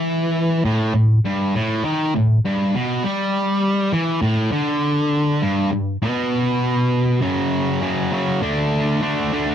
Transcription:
X:1
M:4/4
L:1/8
Q:1/4=100
K:Glyd
V:1 name="Distorted electric guitar" clef=bass
E,2 A,, A,, G,, A,, ^D, A,, | G,, B,, G,3 E, A,, D,- | D,2 G,, G,, B,,4 | [F,,C,F,]2 [F,,C,F,] [F,,C,F,] [D,A,D]2 [D,A,D] [D,A,D] |]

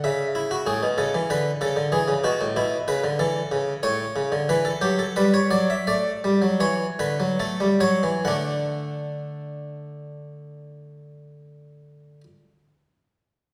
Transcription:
X:1
M:3/4
L:1/16
Q:1/4=83
K:D
V:1 name="Harpsichord"
e2 E F ^G2 A2 B2 A2 | ^G2 F2 E2 B2 A4 | c4 B A G A B c d e | d4 c2 B2 A2 c2 |
[A,Df]12- | [A,Df]12 |]
V:2 name="Harpsichord" clef=bass
C,4 A,, B,, C, E, D,2 C, D, | E, C, B,, A,, B,,2 C, D, E,2 C,2 | A,,2 C, D, E,2 F,2 G,2 F,2 | A,2 G, F, E,2 D, F, A, G, F, E, |
D,12- | D,12 |]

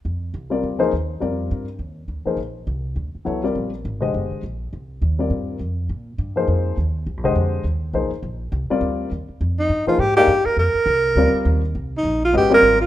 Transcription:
X:1
M:4/4
L:1/8
Q:"Swing" 1/4=205
K:Fdor
V:1 name="Alto saxophone"
z8 | z8 | z8 | z8 |
z8 | z8 | z8 | z8 |
z E2 F G G2 B | B6- B z | z E2 F G B2 F |]
V:2 name="Grand piano"
z3 [G,CFBd]2 [F,B,EAc] z2 | [G,CFBd]3 z4 [F,B,EAc] | z6 [_G,=B,=E=A_d] [=G,CF_B=d]- | [G,CFBd] z2 [D,A,Gce]3 z2 |
z3 [G,CFBd]3 z2 | z3 [F,B,EAc]3 z2 | z [D,A,Gce]3 z2 [F,B,EAc] z | z3 [G,CFBd]3 z2 |
z3 [F,B,EAc] z [B,EAdf] z2 | z4 [G,CFBd]3 z | z4 [A,_D_G=Be] [=G,CF_B=d]2 z |]
V:3 name="Upright bass" clef=bass
F,,2 C,,2 D,,2 E,,2 | F,,2 G,,2 E,,2 D,, z | B,,,2 C,,2 D,, z C,,2 | B,,,2 A,,,2 G,,, z B,,,2 |
C,,2 E,,2 G,,2 F,,2 | B,,2 G,,2 F,,2 E,,2 | (3C,, B,,, F,,, F,,2 E,,2 =B,,, z | B,,,2 C,, z D,,2 E,, z |
F,,2 G,, z A,,2 G,, z | F,, z C,,2 D,, z E,,2 | C,,2 B,,,2 G,,,2 A,,,2 |]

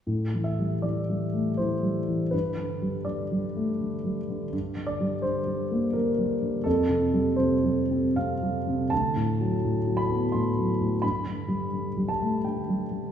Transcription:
X:1
M:3/4
L:1/8
Q:1/4=83
K:Gmix
V:1 name="Grand piano"
z e d2 c2 | B2 d3 z | z d c2 _B2 | A2 c2 f2 |
a3 b c'2 | b3 a g z |]
V:2 name="Grand piano" clef=bass
(3A,, E, G, (3E, G, A, (3E, G, E, | (3G,, D, G, (3D, G, A, (3D, G, D, | (3G,, D, G, (3D, G, _B, (3D, G, D, | (3F,, C, G, (3C, G, C (3C, G, C, |
(3D,, A,, ^F, (3A,, F, B, (3A,, F, A,, | (3G,, D, G, (3D, G, A, (3D, G, D, |]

